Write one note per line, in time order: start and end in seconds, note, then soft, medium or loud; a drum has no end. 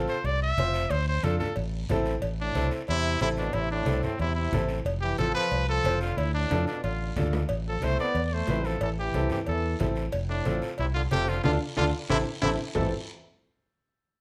0.00 0.15 C4 medium
0.00 0.16 F4 medium
0.00 0.16 A4 loud
0.08 0.27 C5 medium
0.08 short guiro medium
0.24 0.51 C2 loud
0.24 0.42 D5 loud
0.24 cowbell medium
0.24 high conga soft
0.24 long guiro medium
0.42 0.92 E5 loud
0.57 0.84 F1 loud
0.57 0.81 C4 medium
0.57 0.82 F4 medium
0.57 0.82 C5 medium
0.57 cowbell medium
0.57 high conga medium
0.57 short guiro medium
0.74 short guiro medium
0.90 1.17 D2 loud
0.90 1.07 C5 loud
0.90 cowbell loud
0.90 high conga soft
0.90 long guiro medium
1.08 1.25 C5 medium
1.23 1.37 F2 medium
1.23 1.47 D4 medium
1.23 1.47 F4 medium
1.23 1.38 A4 medium
1.23 1.47 A4 medium
1.23 cowbell medium
1.23 high conga medium
1.23 short guiro medium
1.39 1.56 A4 medium
1.39 low conga medium
1.39 short guiro medium
1.56 1.83 A1 loud
1.56 cowbell medium
1.56 high conga soft
1.56 long guiro medium
1.89 2.16 A1 loud
1.89 2.13 C4 medium
1.89 2.13 E4 medium
1.89 2.14 A4 loud
1.89 cowbell medium
1.89 high conga medium
1.89 low conga medium
1.89 short guiro medium
2.05 short guiro medium
2.22 2.49 A1 loud
2.22 cowbell loud
2.22 long guiro medium
2.41 2.71 A2 medium
2.41 2.71 D4 loud
2.55 2.69 C2 medium
2.55 2.78 C4 medium
2.55 2.79 E4 medium
2.55 2.79 A4 medium
2.55 cowbell medium
2.55 high conga medium
2.55 short guiro medium
2.71 short guiro medium
2.87 3.15 E2 medium
2.87 3.20 C3 medium
2.87 3.19 E4 loud
2.87 cowbell medium
2.87 high conga soft
2.87 long guiro medium
3.21 3.48 A1 loud
3.21 3.29 C3 medium
3.21 3.44 C4 medium
3.21 3.45 E4 medium
3.21 3.29 E4 loud
3.21 3.45 A4 medium
3.21 cowbell medium
3.21 high conga medium
3.21 short guiro medium
3.37 3.56 B2 medium
3.37 3.56 D4 medium
3.37 short guiro medium
3.53 3.81 A1 medium
3.53 3.71 C3 medium
3.53 3.71 E4 loud
3.53 cowbell loud
3.53 high conga soft
3.53 long guiro medium
3.71 4.02 A2 medium
3.71 4.02 D4 loud
3.86 4.01 C2 medium
3.86 4.10 C4 medium
3.86 4.10 E4 medium
3.86 4.10 A4 medium
3.86 cowbell medium
3.86 high conga medium
3.86 short guiro medium
4.03 4.19 A2 medium
4.03 4.19 C4 medium
4.03 low conga medium
4.03 short guiro medium
4.19 4.46 E2 loud
4.19 4.35 C3 medium
4.19 4.34 E4 loud
4.19 cowbell medium
4.19 high conga soft
4.19 long guiro medium
4.35 4.67 C3 medium
4.35 4.66 E4 medium
4.52 4.79 A1 loud
4.52 4.76 C4 medium
4.52 4.76 E4 medium
4.52 4.77 A4 medium
4.52 cowbell medium
4.52 high conga medium
4.52 low conga medium
4.52 short guiro medium
4.69 short guiro medium
4.85 5.12 F1 loud
4.85 cowbell loud
4.85 high conga soft
4.85 long guiro medium
5.01 5.18 E3 medium
5.01 5.17 G4 loud
5.18 5.32 A1 medium
5.18 5.35 F3 medium
5.18 5.42 C4 medium
5.18 5.42 F4 medium
5.18 5.34 A4 loud
5.18 5.42 A4 medium
5.18 cowbell medium
5.18 high conga medium
5.18 short guiro medium
5.34 5.66 F3 medium
5.34 5.65 B4 loud
5.34 short guiro medium
5.51 5.78 C2 medium
5.51 cowbell medium
5.51 long guiro medium
5.68 5.99 F3 medium
5.68 5.99 A4 loud
5.84 6.11 F1 loud
5.84 6.08 C4 medium
5.84 6.08 F4 medium
5.84 6.09 C5 medium
5.84 cowbell medium
5.84 high conga medium
5.84 short guiro medium
6.01 6.20 D3 medium
6.01 6.19 F4 medium
6.01 short guiro medium
6.17 6.44 D2 medium
6.17 6.35 A2 medium
6.17 6.34 E4 medium
6.17 cowbell loud
6.17 high conga soft
6.17 long guiro medium
6.34 6.66 A2 medium
6.34 6.65 D4 loud
6.51 6.64 F2 medium
6.51 6.74 D4 medium
6.51 6.74 F4 medium
6.51 6.75 A4 medium
6.51 cowbell medium
6.51 high conga medium
6.51 high timbale medium
6.51 short guiro medium
6.67 6.84 B2 medium
6.67 6.83 D4 medium
6.67 short guiro medium
6.83 7.10 A1 loud
6.83 7.15 D3 medium
6.83 7.14 F4 medium
6.83 cowbell medium
6.83 high conga soft
6.83 long guiro medium
7.16 7.43 D2 loud
7.16 7.40 D4 medium
7.16 7.40 F4 medium
7.16 7.40 A4 medium
7.16 cowbell medium
7.16 high conga medium
7.16 low conga medium
7.16 low timbale medium
7.16 short guiro medium
7.33 low timbale loud
7.33 short guiro medium
7.48 7.76 A1 loud
7.48 cowbell loud
7.48 high conga soft
7.48 long guiro medium
7.68 7.86 F3 medium
7.68 7.86 A4 medium
7.82 7.96 C2 medium
7.82 8.00 A3 medium
7.82 8.05 C4 medium
7.82 8.05 E4 medium
7.82 8.06 A4 medium
7.82 7.99 C5 loud
7.82 cowbell medium
7.82 high conga medium
7.82 short guiro medium
7.99 8.24 B3 loud
7.99 8.26 D5 loud
7.99 short guiro medium
8.15 8.41 E2 medium
8.15 cowbell medium
8.15 high conga soft
8.15 long guiro medium
8.24 8.34 B3 medium
8.24 8.35 D5 medium
8.32 8.67 A3 medium
8.32 8.67 C5 loud
8.47 8.74 A1 loud
8.47 8.71 C4 medium
8.47 8.72 E4 medium
8.47 8.72 B4 medium
8.47 cowbell medium
8.47 high conga medium
8.47 low timbale medium
8.47 short guiro medium
8.65 8.81 F3 medium
8.65 8.82 A4 medium
8.65 short guiro medium
8.81 9.08 A1 loud
8.81 8.89 E3 medium
8.81 8.90 A4 medium
8.81 cowbell loud
8.81 long guiro medium
8.99 9.29 E3 medium
8.99 9.29 G4 medium
9.14 9.28 C2 loud
9.14 9.37 C4 medium
9.14 9.37 E4 medium
9.14 9.38 A4 medium
9.14 cowbell medium
9.14 high conga medium
9.14 short guiro medium
9.30 9.39 E3 medium
9.30 9.39 G4 medium
9.30 low conga medium
9.30 short guiro medium
9.46 9.74 E2 medium
9.46 9.78 E3 medium
9.46 9.78 A4 medium
9.46 cowbell medium
9.46 long guiro medium
9.79 10.07 A1 loud
9.79 10.03 C4 medium
9.79 10.03 E4 medium
9.79 10.03 A4 medium
9.79 cowbell medium
9.79 high conga medium
9.79 low conga medium
9.79 short guiro medium
9.96 short guiro medium
10.12 10.40 F1 loud
10.12 cowbell loud
10.12 high conga soft
10.12 long guiro medium
10.29 10.60 A2 medium
10.29 10.60 D4 medium
10.45 10.59 A1 medium
10.45 10.68 C4 medium
10.45 10.69 F4 medium
10.45 10.69 A4 medium
10.45 cowbell medium
10.45 high conga medium
10.45 short guiro medium
10.62 short guiro medium
10.78 11.05 C2 medium
10.78 10.87 C3 medium
10.78 10.86 E4 loud
10.78 cowbell medium
10.78 long guiro medium
10.94 11.03 D3 medium
10.94 11.02 F4 loud
11.11 11.38 F1 loud
11.11 11.31 C3 medium
11.11 11.35 C4 medium
11.11 11.35 F4 medium
11.11 11.30 G4 loud
11.11 11.35 A4 medium
11.11 cowbell medium
11.11 high conga medium
11.11 short guiro medium
11.27 11.44 D3 medium
11.27 11.43 F4 loud
11.27 short guiro medium
11.44 11.57 D2 loud
11.44 11.52 D3 medium
11.44 11.55 D4 loud
11.44 11.52 F4 medium
11.44 11.55 F4 loud
11.44 11.55 A4 loud
11.44 high conga loud
11.44 high timbale medium
11.44 long guiro loud
11.77 11.90 D2 loud
11.77 11.85 D3 loud
11.77 11.88 D4 loud
11.77 11.85 F4 loud
11.77 11.88 F4 loud
11.77 11.88 A4 medium
11.77 high conga medium
11.77 high timbale medium
11.77 long guiro loud
12.10 12.22 A1 loud
12.10 12.18 C3 loud
12.10 12.21 C4 medium
12.10 12.18 E4 loud
12.10 12.21 E4 medium
12.10 12.21 A4 loud
12.10 high conga loud
12.10 high timbale loud
12.10 long guiro loud
12.42 12.55 A1 loud
12.42 12.52 C3 medium
12.42 12.54 C4 loud
12.42 12.50 E4 loud
12.42 12.54 E4 loud
12.42 12.54 A4 loud
12.42 high conga medium
12.42 high timbale loud
12.42 long guiro loud
12.75 12.92 A1 loud
12.75 12.92 E3 medium
12.75 12.91 C4 medium
12.75 12.91 E4 medium
12.75 12.91 A4 medium
12.75 low conga loud
12.75 low timbale loud
12.75 long guiro loud